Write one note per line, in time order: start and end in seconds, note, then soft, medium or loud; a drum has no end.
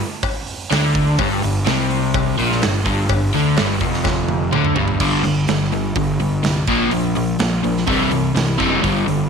0.00 open hi-hat medium
0.23 kick loud
0.23 open hi-hat medium
0.23 cowbell medium
0.47 open hi-hat medium
0.71 1.16 D2 medium
0.71 1.19 D3 loud
0.71 snare loud
0.71 open hi-hat medium
0.71 cowbell medium
0.95 kick medium
0.95 open hi-hat medium
1.18 1.41 G1 loud
1.18 1.43 G2 loud
1.18 kick loud
1.18 open hi-hat medium
1.18 cowbell loud
1.43 1.65 G1 medium
1.43 1.63 G2 medium
1.43 open hi-hat medium
1.66 2.35 C2 medium
1.66 2.38 C3 loud
1.66 snare loud
1.66 open hi-hat medium
1.66 cowbell medium
1.90 open hi-hat medium
2.14 kick loud
2.14 open hi-hat medium
2.14 cowbell loud
2.38 2.61 A#1 medium
2.38 2.62 A#2 loud
2.38 open hi-hat medium
2.52 snare soft
2.62 2.85 G1 medium
2.62 2.82 G2 medium
2.62 snare loud
2.62 open hi-hat medium
2.62 cowbell medium
2.85 3.08 G1 medium
2.85 3.09 G2 loud
2.85 kick medium
2.85 open hi-hat medium
3.09 3.32 G1 medium
3.09 3.29 G2 medium
3.09 kick loud
3.09 open hi-hat medium
3.09 cowbell loud
3.33 3.56 D2 loud
3.33 3.57 D3 loud
3.33 open hi-hat medium
3.56 3.80 G1 medium
3.56 3.81 G2 loud
3.56 snare loud
3.56 open hi-hat medium
3.56 cowbell medium
3.80 4.49 F1 medium
3.80 4.52 F2 loud
3.80 kick medium
3.80 open hi-hat medium
3.94 snare soft
4.04 kick loud
4.04 snare medium
4.04 cowbell medium
4.28 high tom medium
4.52 4.75 D2 loud
4.52 4.76 D3 loud
4.52 mid tom medium
4.52 cowbell medium
4.65 mid tom medium
4.76 4.99 G1 medium
4.76 4.99 G2 loud
4.76 floor tom loud
4.88 floor tom loud
5.00 5.22 G1 medium
5.00 5.23 G2 medium
5.00 5.23 D3 loud
5.00 5.23 G3 loud
5.00 kick loud
5.00 crash loud
5.24 5.47 G1 medium
5.24 5.46 G2 medium
5.24 5.46 D3 medium
5.24 open hi-hat medium
5.48 5.93 G1 medium
5.48 5.70 G2 medium
5.48 5.70 D3 medium
5.48 snare loud
5.48 open hi-hat medium
5.72 5.94 G2 medium
5.72 5.95 D3 medium
5.72 open hi-hat medium
5.96 6.40 G1 medium
5.96 6.18 G2 medium
5.96 6.18 D3 medium
5.96 kick loud
5.96 open hi-hat medium
6.20 6.42 G2 medium
6.20 6.42 D3 medium
6.20 open hi-hat medium
6.43 6.66 C2 medium
6.43 6.66 G2 medium
6.43 6.66 D3 medium
6.43 snare loud
6.43 open hi-hat medium
6.67 6.90 A#1 medium
6.67 6.90 A#2 medium
6.67 6.91 F3 loud
6.67 6.92 A#3 loud
6.67 kick loud
6.67 open hi-hat medium
6.91 7.36 A#1 medium
6.91 7.14 A#2 medium
6.91 7.14 F3 medium
6.91 open hi-hat medium
7.15 7.38 A#2 medium
7.15 7.38 F3 medium
7.15 open hi-hat medium
7.39 7.62 A#1 medium
7.39 7.62 A#2 medium
7.39 7.62 F3 medium
7.39 snare loud
7.39 open hi-hat medium
7.63 7.86 A#1 medium
7.63 7.86 A#2 medium
7.63 7.86 F3 medium
7.63 open hi-hat medium
7.77 snare soft
7.87 8.32 C2 medium
7.87 8.10 C3 medium
7.87 8.11 E3 medium
7.87 8.11 G3 loud
7.87 kick loud
7.87 open hi-hat medium
8.11 8.34 C3 medium
8.11 8.34 E3 medium
8.11 open hi-hat medium
8.35 8.57 C2 medium
8.35 8.57 C3 medium
8.35 8.57 E3 medium
8.35 snare loud
8.35 open hi-hat medium
8.58 8.82 F#1 medium
8.58 8.82 C3 loud
8.58 8.82 E3 loud
8.58 8.82 G3 loud
8.58 kick medium
8.58 open hi-hat medium
8.83 9.06 G1 medium
8.83 9.05 G2 medium
8.83 9.05 D3 medium
8.83 9.07 G3 medium
8.83 kick loud
8.83 open hi-hat medium
9.06 9.29 G1 medium
9.06 9.29 G2 medium
9.06 9.29 D3 medium
9.06 open hi-hat medium